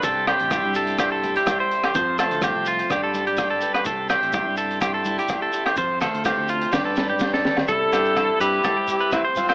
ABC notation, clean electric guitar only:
X:1
M:4/4
L:1/16
Q:1/4=125
K:C
V:1 name="Clean electric guitar"
A2 G2 G2 A2 G A2 G2 c2 G | c2 A2 G2 F2 G A2 G2 A2 B | A2 G2 G2 A2 G A2 G2 A2 G | c2 A2 G2 F2 G A2 G2 A2 z |
A2 G2 A2 B2 A G2 B2 c2 c |]